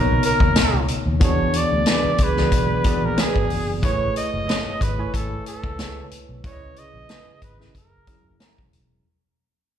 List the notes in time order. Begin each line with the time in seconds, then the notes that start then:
Already playing: A#1 B2 C#3 B3 D#4 F#4 A#4 C#5
0.23 A#4, closed hi-hat
0.40 D#2, kick
0.56 C#4 D#4 A#4, muted fingered electric bass stroke, snare, closed hi-hat
0.73 C#2
0.88 closed hi-hat
1.06 D#2
1.20 E2 E3 B3 D4 F#4 G#4, kick, closed hi-hat
1.24 C#5
1.53 D5, closed hi-hat
1.71 D2
1.86 D4 G#4 B4, snare, closed hi-hat
2.05 muted fingered electric bass stroke
2.18 C#2 G#4, kick, closed hi-hat
2.23 B4
2.37 E3 B3 F#4 G#4 D5, snare
2.52 B1, kick, closed hi-hat
2.84 E3 B3 F#4 G#4 D5, kick, closed hi-hat
3.03 A#1 A#4
3.17 D4 G#4 B4, snare, closed hi-hat
3.36 G#1, kick
3.50 F#1, open hi-hat
3.82 A1 A3 E4 G#4 B4 C#5, kick, closed hi-hat
4.16 D#5, closed hi-hat
4.34 F#1
4.47 E4 G#4 C#5, snare, closed hi-hat
4.66 muted fingered electric bass stroke
4.81 G#1 B4, kick, closed hi-hat
4.98 A3 E4 B4 C#5 G#5
5.14 G#1 A4, kick, closed hi-hat
5.46 A4 B4, closed hi-hat
5.64 C#2, kick
5.78 E4 G#4 C#5, snare, closed hi-hat
6.11 muted fingered electric bass stroke, closed hi-hat
6.29 B1
6.44 C#2 C#3 C#4 E4 B4 C#5 D5, kick, closed hi-hat
6.52 D#5
6.76 G#4 D#5, closed hi-hat
6.94 A#1
7.09 E4 G#4 B4, snare, closed hi-hat
7.27 muted fingered electric bass stroke
7.42 G#1 B4, kick, closed hi-hat
7.59 C#3 C#4 E4 B4 D#5, snare
7.75 F#1 A#4, kick, closed hi-hat
8.07 F#3 C#4 E4 G#4 A#4, kick, closed hi-hat
8.25 F#1
8.40 C#4 E4 A#4, snare, closed hi-hat
8.58 E1, kick
8.73 E1, closed hi-hat